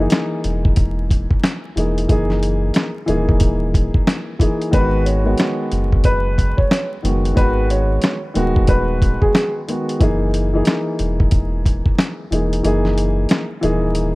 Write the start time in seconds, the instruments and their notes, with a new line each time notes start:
0.00 grand piano E3 A#3 D#4 G#4
0.10 snare, closed hi-hat
0.44 sub bass E1, closed hi-hat
0.65 kick
0.76 kick, closed hi-hat
1.11 kick, closed hi-hat
1.31 kick
1.44 snare, closed hi-hat
1.76 sub bass E1, grand piano E3 A#3 D#4 G#4, closed hi-hat
1.98 closed hi-hat
2.08 sub bass F#1, grand piano E3 A#3 D#4 G#4, kick, closed hi-hat
2.30 snare
2.43 closed hi-hat
2.74 snare, closed hi-hat
3.06 sub bass D#1, grand piano E3 A#3 D#4 G#4, closed hi-hat
3.29 kick
3.40 kick, closed hi-hat
3.74 kick, closed hi-hat
3.94 kick
4.07 snare, closed hi-hat
4.39 grand piano E3 A#3 D#4 G#4, kick, closed hi-hat
4.62 closed hi-hat
4.71 sub bass G#1, grand piano D#3 G#3 B3 F#4, upright piano B4, kick, closed hi-hat
5.05 upright piano C#5, closed hi-hat
5.24 grand piano D#3 G#3 B3 F#4
5.38 snare, closed hi-hat
5.72 sub bass F#1, closed hi-hat
5.92 kick
6.04 upright piano B4, kick, closed hi-hat
6.38 kick, closed hi-hat
6.57 upright piano C#5, kick
6.71 snare, closed hi-hat
7.03 sub bass F#1, grand piano D#3 G#3 B3 F#4, closed hi-hat
7.25 closed hi-hat
7.35 sub bass G#1, grand piano D#3 G#3 B3 F#4, upright piano B4, kick, closed hi-hat
7.70 upright piano C#5, closed hi-hat
8.02 snare, closed hi-hat
8.34 sub bass D#1, grand piano D#3 G#3 B3 F#4, closed hi-hat
8.56 kick
8.67 upright piano B4, kick, closed hi-hat
9.02 kick, closed hi-hat
9.22 upright piano G#4, kick
9.35 snare, closed hi-hat
9.68 grand piano D#3 G#3 B3 F#4, closed hi-hat
9.89 closed hi-hat
10.00 sub bass F#1, grand piano E3 A#3 D#4 G#4, kick, closed hi-hat
10.34 closed hi-hat
10.53 grand piano E3 A#3 D#4 G#4
10.65 snare, closed hi-hat
10.99 sub bass E1, closed hi-hat
11.20 kick
11.31 kick, closed hi-hat
11.66 kick, closed hi-hat
11.86 kick
11.98 snare, closed hi-hat
12.31 sub bass E1, grand piano E3 A#3 D#4 G#4, closed hi-hat
12.53 closed hi-hat
12.63 sub bass F#1, grand piano E3 A#3 D#4 G#4, closed hi-hat
12.85 snare
12.98 closed hi-hat
13.29 snare, closed hi-hat
13.61 sub bass D#1, grand piano E3 A#3 D#4 G#4, closed hi-hat
13.95 closed hi-hat